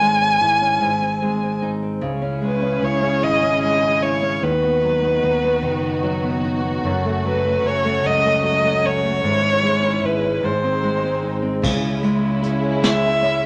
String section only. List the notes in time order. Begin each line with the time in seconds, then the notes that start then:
2.02 C#4 E4 G#4
4.43 B3 D#4 F#4
6.85 A3 C#4
9.25 G#3 E4
10.43 C4 D#4
11.64 G#3 C#4 E4